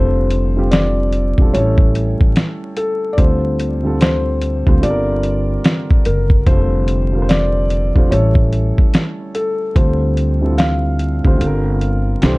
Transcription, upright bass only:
Already playing: F1
1.38 E1
1.54 A1
2.21 A1
3.18 D2
4.67 D2
4.83 G1
6.06 F#1
6.47 F1
7.96 E1
8.12 A1
8.78 A1
9.76 D2
11.25 D2
11.41 G1
12.23 C2

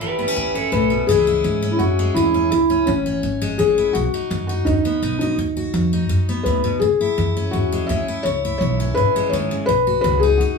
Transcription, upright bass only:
Already playing: A1
0.37 A1
0.72 B1
1.08 C#2
1.44 G#2
1.80 F#2
2.15 E2
2.51 C#2
2.88 A1
3.24 G#1
3.59 A1
3.95 B1
4.13 muted upright bass stroke
4.31 F#2
4.66 D#2
5.02 B1
5.38 D#2
5.74 F2
6.10 F#2
6.45 D#2
6.81 C#2
7.00 muted upright bass stroke
7.18 F#2
7.53 E2
7.89 D#2
8.07 muted upright bass stroke
8.25 C#2
8.61 B1
8.97 A1
9.33 G#1
9.69 B1
10.04 C#2
10.40 D#2

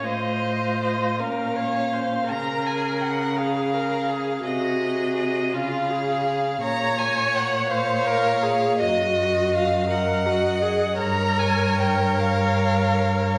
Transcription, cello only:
0.04 A2
1.20 A#2
2.30 C#3
4.44 C3
5.53 C#3
6.63 A#2
8.80 F#2
11.00 G2

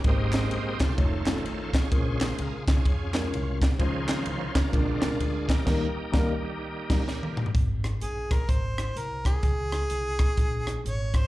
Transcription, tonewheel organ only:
0.05 G#3 A#3 C4 G4 C5 D#5
0.37 G4 C5 D#5
0.83 A4 C5 F5
0.99 D#3 A3 C#4
1.75 F4 G#4 C#5
1.92 C#3 G#3 C5
2.22 C5
2.41 A#4
2.70 C#4 F4 G#4
3.62 G4
3.80 D#3 F3 C#4 F4 G#4 C5
4.27 C5
4.57 D4 F4 A#4
4.75 D3 G#3 C4
5.04 A#4
5.20 G#4
5.48 A#3 D#4 G4
6.42 D#3 G3 A#3

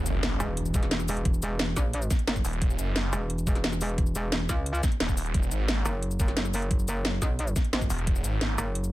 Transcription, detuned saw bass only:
0.06 F#1
2.45 D#1
2.62 D#1
2.79 F#1
5.00 D#1
5.34 E1
5.51 G#1
7.90 E1
8.07 E1
8.24 G#1

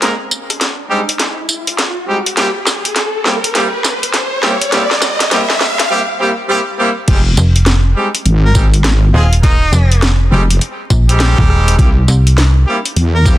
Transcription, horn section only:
0.01 G#3 A#3 C4 D#4 A#4
0.90 G3 G#3 C4 D#4 G4
2.07 G3 G#3 C4 D#4 G4
2.37 G3 A#3 C4 E4 G4
3.25 G3 A#3 C4 E4 G4
3.55 G3 A#3 C4 E4 G4
4.43 G3 A#3 C4 E4 G4
4.73 G3 A#3 C4 E4 G4
5.32 G3 A#3 C4 E4 G4
5.90 G3 A#3 C4 E4 G4
6.20 G3 A#3 C4 E4 G4
6.49 G3 A#3 C4 E4 G4
6.78 G3 A#3 C4 E4 G4
7.08 G3 G#3 C4 D#4 G4
7.96 G3 G#3 C4 D#4 G4
8.55 G3 G#3 C4 D#4 G4
9.14 G#3 C4 D#4 G#4
9.43 G#3 A#3 C4 D#4 A#4
10.31 G3 G#3 C4 D#4 G4
11.09 G3 G#3 C4 D#4 G4
11.79 G3 A#3 C4 E4 G4
12.67 G3 A#3 C4 E4 G4
13.26 G3 A#3 C4 E4 G4

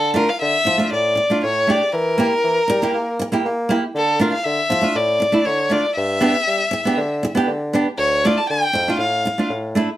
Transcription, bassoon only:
Already playing: D3
0.41 D3
0.67 F3
0.92 A2
1.43 A2
1.93 E3
2.44 E3
2.70 G3
2.94 A#3
3.45 A#3
3.94 D3
4.45 D3
4.69 F3
4.95 A2
5.46 D3
5.97 G2
6.47 G3
6.97 D3
7.47 D3
7.98 D2
8.50 D3
8.74 F2
8.98 A2
9.49 A2

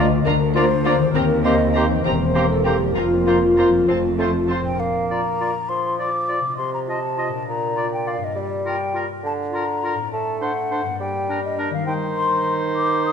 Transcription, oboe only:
0.56 D5
0.86 D5
1.45 C5
1.75 C5
2.35 C5
2.66 C5
3.27 C5
3.58 C5
4.20 C5
4.50 C5
5.11 D5
5.41 D5
5.99 D5
6.29 D5
6.89 D#5
7.19 D#5
7.77 D5
8.07 D5
8.66 A#4
8.96 A#4
9.55 A#4
9.84 A#4
10.42 C5
10.71 C5
11.30 A#4
11.58 A#4
11.88 C5

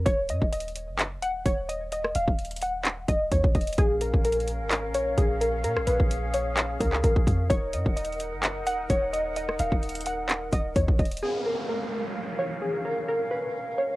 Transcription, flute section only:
3.78 C#4 A#4 F5
5.64 G#4
7.50 D#4 A#4 F#5
11.23 C#4 A#4 F5

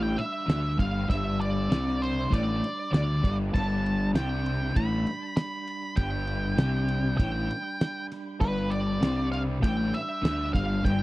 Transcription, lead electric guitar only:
0.03 G5
0.18 E5
0.79 F5
1.10 E5
1.41 D5
2.02 C5
2.33 D5
2.93 D5
3.54 A5
4.15 G5
4.76 B5
5.37 B5
5.96 G5
7.18 G5
8.41 B4
8.70 D5
9.32 F5
9.63 G5
9.94 E5
10.53 F5
10.85 G5

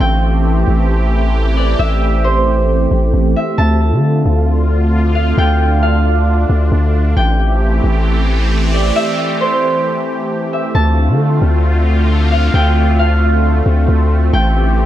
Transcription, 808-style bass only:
0.00 A1
0.67 A1
1.79 A1
2.91 A1
3.14 A1
3.58 D2
3.92 D3
4.26 D2
5.38 D2
6.50 D2
6.72 D2
7.17 A1
7.84 A1
10.75 D2
11.08 D3
11.42 D2
12.54 D2
13.66 D2
13.88 D2
14.33 A1

